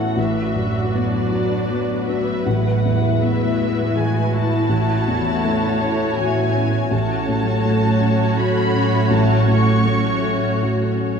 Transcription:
0.00 0.13 A1 soft
0.00 0.19 E2 soft
0.00 0.17 A2 soft
0.00 2.42 A2 soft
0.00 0.12 E3 soft
0.00 0.20 E3 soft
0.00 0.12 C#4 soft
0.00 0.20 C#4 soft
0.00 0.20 E4 soft
0.00 0.20 F#4 soft
0.00 0.41 F#4 soft
0.00 2.42 F#4 soft
0.00 0.14 A4 soft
0.00 0.20 C#5 soft
0.00 0.20 E5 soft
0.00 0.18 F#5 medium
0.17 2.42 A1 soft
0.17 2.45 A2 soft
0.17 2.42 F#3 soft
0.17 2.42 D4 soft
0.17 4.67 B4 soft
0.17 0.94 E5 medium
0.42 0.93 F#4 soft
0.56 1.16 F#2 soft
0.69 1.68 F#3 soft
0.94 1.55 B3 soft
0.94 1.43 F#4 soft
0.94 2.08 D5 medium
1.19 2.19 B3 soft
1.32 1.92 F#4 soft
1.44 1.94 F#4 soft
1.70 5.60 F#3 soft
1.70 2.31 B3 soft
1.95 5.85 F#4 soft
2.07 2.46 F#4 soft
2.07 2.45 E5 medium
2.21 3.45 B3 soft
2.45 4.67 A1 soft
2.45 4.69 A2 soft
2.45 6.89 A2 soft
2.45 4.67 G#3 soft
2.45 6.88 E4 medium
2.45 6.89 F#4 soft
2.45 3.22 F#5 medium
2.72 3.21 E4 soft
2.85 3.45 E2 soft
2.97 3.96 E3 soft
3.21 3.81 B3 soft
3.21 3.71 E4 soft
3.21 3.96 E5 medium
3.47 4.45 B3 soft
3.58 4.18 E4 soft
3.72 4.20 E4 soft
3.96 4.74 E3 soft
3.96 4.55 G#4 soft
3.96 4.34 G#5 medium
4.21 6.96 E4 soft
4.33 4.70 E4 soft
4.33 6.19 A5 medium
4.46 4.74 B3 soft
4.69 6.88 A1 soft
4.69 6.92 A2 soft
4.69 6.88 A3 medium
4.69 6.88 C#5 medium
4.95 5.44 C#4 soft
5.07 5.67 E2 soft
5.20 6.17 E3 soft
5.45 6.04 A3 soft
5.45 5.93 C#4 soft
5.69 6.67 A3 soft
5.81 6.40 C#4 soft
5.94 6.42 C#4 soft
6.18 6.95 E3 soft
6.18 6.78 F#4 soft
6.18 6.91 G#5 medium
6.43 7.16 C#4 soft
6.55 6.92 C#4 soft
6.68 7.89 A3 soft
6.91 9.07 A1 soft
6.91 11.20 A2 soft
6.91 9.11 A2 soft
6.91 11.20 A3 medium
6.91 11.20 C#4 soft
6.91 11.20 F#4 soft
6.91 11.20 C#5 soft
6.91 8.39 A5 medium
7.18 7.65 C#4 soft
7.28 7.87 A2 soft
7.42 8.37 F#3 soft
7.65 8.23 A3 soft
7.65 8.13 C#4 soft
7.90 8.86 A3 soft
8.00 8.59 C#4 soft
8.15 8.62 C#4 soft
8.37 9.61 F#3 soft
8.37 8.96 F#4 soft
8.37 9.12 B5 medium
8.63 9.36 C#4 soft
8.73 9.34 C#4 soft
8.87 10.12 A3 soft
9.11 11.20 A1 soft
9.11 11.20 A2 soft
9.11 9.50 A5 medium
9.38 9.86 C#4 soft
9.48 10.09 A2 soft
9.48 10.64 C#6 medium
9.63 10.63 F#3 soft
9.85 10.47 A3 soft
9.85 10.37 C#4 soft
10.13 11.14 A3 soft
10.24 10.86 C#4 soft
10.38 10.88 C#4 soft
10.63 11.20 F#3 soft
10.63 11.20 F#4 soft
10.89 11.20 C#4 soft
11.01 11.20 C#4 soft
11.15 11.20 A3 soft

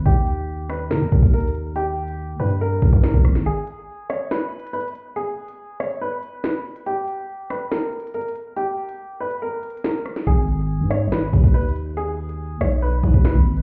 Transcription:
0.06 0.92 D#2 loud
0.06 0.66 G4 medium
0.06 kick loud
0.06 closed hi-hat medium
0.27 closed hi-hat medium
0.69 0.89 B4 medium
0.69 cross-stick medium
0.69 closed hi-hat medium
0.90 1.03 D#3 loud
0.90 1.31 A#4 medium
0.90 snare loud
1.01 1.11 D#2 loud
1.12 1.22 D#2 loud
1.12 kick loud
1.12 closed hi-hat medium
1.19 2.36 D#2 loud
1.19 kick loud
1.19 closed hi-hat medium
1.26 closed hi-hat medium
1.33 1.53 A#4 medium
1.33 closed hi-hat medium
1.40 closed hi-hat medium
1.47 closed hi-hat medium
1.55 closed hi-hat medium
1.76 2.36 G4 loud
1.76 closed hi-hat medium
2.08 closed hi-hat medium
2.40 2.81 G2 loud
2.40 2.59 B4 medium
2.50 closed hi-hat medium
2.61 3.01 A#4 medium
2.82 2.92 D#2 loud
2.82 kick loud
2.82 closed hi-hat medium
2.89 3.13 G2 loud
2.89 kick loud
2.89 closed hi-hat medium
2.96 closed hi-hat medium
3.04 3.23 A#4 medium
3.04 snare loud
3.04 closed hi-hat medium
3.11 3.24 D#2 loud
3.11 kick loud
3.11 closed hi-hat medium
3.18 closed hi-hat medium
3.25 3.45 G#1 loud
3.25 kick medium
3.25 cross-stick medium
3.25 closed hi-hat medium
3.35 snare medium
3.35 closed hi-hat medium
3.46 4.06 G#4 loud
3.46 closed hi-hat medium
3.67 closed hi-hat medium
4.10 4.29 C#5 medium
4.10 cross-stick medium
4.10 closed hi-hat medium
4.31 4.71 B4 medium
4.31 snare loud
4.52 closed hi-hat medium
4.60 closed hi-hat medium
4.67 closed hi-hat medium
4.73 4.93 B4 medium
4.73 closed hi-hat medium
4.81 closed hi-hat medium
4.88 closed hi-hat medium
4.95 closed hi-hat medium
5.16 5.76 G#4 loud
5.16 closed hi-hat medium
5.48 closed hi-hat medium
5.80 6.00 C#5 medium
5.80 cross-stick medium
5.91 closed hi-hat medium
6.01 6.41 B4 medium
6.23 closed hi-hat medium
6.44 6.64 B4 medium
6.44 snare loud
6.65 open hi-hat medium
6.76 closed hi-hat medium
6.86 7.46 G4 medium
6.86 closed hi-hat medium
7.08 closed hi-hat medium
7.50 7.70 B4 medium
7.50 cross-stick medium
7.50 closed hi-hat medium
7.71 8.11 A#4 medium
7.71 snare loud
7.93 closed hi-hat medium
8.00 closed hi-hat medium
8.07 closed hi-hat medium
8.14 8.34 A#4 medium
8.14 closed hi-hat medium
8.21 closed hi-hat medium
8.28 closed hi-hat medium
8.36 closed hi-hat medium
8.56 9.17 G4 loud
8.56 closed hi-hat medium
8.89 closed hi-hat medium
9.20 9.40 B4 medium
9.31 closed hi-hat medium
9.42 9.82 A#4 medium
9.63 closed hi-hat medium
9.70 closed hi-hat medium
9.77 closed hi-hat medium
9.84 10.04 A#4 medium
9.84 snare loud
9.84 closed hi-hat medium
9.91 closed hi-hat medium
9.99 closed hi-hat medium
10.06 cross-stick medium
10.06 closed hi-hat medium
10.16 snare medium
10.16 closed hi-hat medium
10.27 10.82 G#1 loud
10.27 10.87 G#4 medium
10.27 kick loud
10.27 closed hi-hat medium
10.48 closed hi-hat medium
10.80 11.08 G#2 loud
10.90 11.10 C#5 medium
10.90 cross-stick medium
10.90 closed hi-hat medium
11.07 11.32 G#1 loud
11.12 11.52 B4 medium
11.12 snare loud
11.33 11.43 D#2 loud
11.33 kick loud
11.33 closed hi-hat medium
11.40 12.57 D#2 loud
11.40 kick loud
11.40 closed hi-hat medium
11.47 closed hi-hat medium
11.54 11.74 B4 medium
11.54 closed hi-hat medium
11.62 closed hi-hat medium
11.69 closed hi-hat medium
11.76 closed hi-hat medium
11.97 12.57 G#4 loud
11.97 closed hi-hat medium
12.29 closed hi-hat medium
12.61 13.02 B1 loud
12.61 12.81 C#5 medium
12.61 cross-stick medium
12.71 closed hi-hat medium
12.82 13.22 B4 medium
13.03 13.13 G#2 loud
13.03 kick loud
13.03 closed hi-hat medium
13.14 13.35 D#2 loud
13.14 kick loud
13.25 13.45 B4 medium
13.25 snare loud
13.35 13.62 G#1 loud
13.35 kick loud
13.46 open hi-hat medium
13.57 closed hi-hat medium

